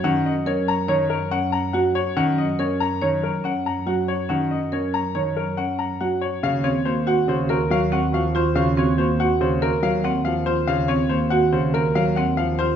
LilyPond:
<<
  \new Staff \with { instrumentName = "Grand piano" } { \time 5/4 \key fis \major \tempo 4 = 141 fis''8 dis''8 cis''8 ais''8 cis''8 ais'8 fis''8 ais''8 fis''8 cis''8 | fis''8 dis''8 cis''8 ais''8 cis''8 ais'8 fis''8 ais''8 fis''8 cis''8 | fis''8 dis''8 cis''8 ais''8 cis''8 ais'8 fis''8 ais''8 fis''8 cis''8 | \key ees \dorian f''8 des''8 c''8 ges''8 c''8 bes'8 f''8 ges''8 f''8 c''8 |
f''8 des''8 c''8 ges''8 c''8 bes'8 f''8 ges''8 f''8 c''8 | f''8 des''8 c''8 ges''8 c''8 bes'8 f''8 ges''8 f''8 c''8 | }
  \new Staff \with { instrumentName = "Clarinet" } { \time 5/4 \key fis \major r1 r4 | r1 r4 | r1 r4 | \key ees \dorian ges'8 ges'8 ges'8 ges'8 ges'8 ges'8 ges'8 ges'8 ges'8 ges'8 |
ges'8 ges'8 ges'8 ges'8 ges'8 ges'8 ges'8 ges'8 ges'8 r8 | r1 r4 | }
  \new Staff \with { instrumentName = "Marimba" } { \time 5/4 \key fis \major cis'8 r8 ais'8 r8 cis''8 r8 cis'8 r8 fis'8 r8 | cis'8 r8 ais'8 r8 cis''8 r8 cis'8 r8 fis'8 r8 | cis'8 r8 ais'8 r8 cis''8 r8 cis'8 r8 fis'8 r8 | \key ees \dorian r8 c'8 r8 ges'8 r8 bes'8 r8 c'8 r8 f'8 |
r8 c'8 r8 ges'8 r8 bes'8 r8 c'8 r8 f'8 | r8 c'8 r8 ges'8 r8 bes'8 r8 c'8 r8 f'8 | }
  \new Staff \with { instrumentName = "Grand piano" } { \clef bass \time 5/4 \key fis \major dis8 r8 cis'8 r8 dis8 r4. fis8 r8 | dis8 r8 cis'8 r8 dis8 r4. fis8 r8 | dis8 r8 cis'8 r8 dis8 r4. fis8 r8 | \key ees \dorian des8 r8 bes8 r8 des8 r8 ges8 r8 f8 r8 |
des8 r8 bes8 r8 des8 r8 ges8 r8 f8 r8 | des8 r8 bes8 r8 des8 r8 ges8 r8 f8 r8 | }
  \new Staff \with { instrumentName = "Double bass section" } { \clef bass \time 5/4 \key fis \major fis,1~ fis,4~ | fis,1~ fis,4~ | fis,1~ fis,4 | \key ees \dorian ees,1~ ees,4~ |
ees,1~ ees,4~ | ees,1~ ees,4 | }
>>